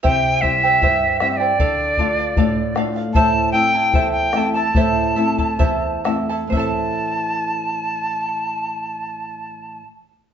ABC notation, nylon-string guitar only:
X:1
M:2/4
L:1/8
Q:1/4=72
K:Am
V:1 name="Nylon-string guitar"
C, [G,CE] G,, [G,CE] | D, [A,DF] A,, [A,DF] | A,, [A,CE] E,, [A,CE] | A,, [A,CE] E,, [A,CE] |
[A,,E,CEAe]4- | [A,,E,CEAe]4 |]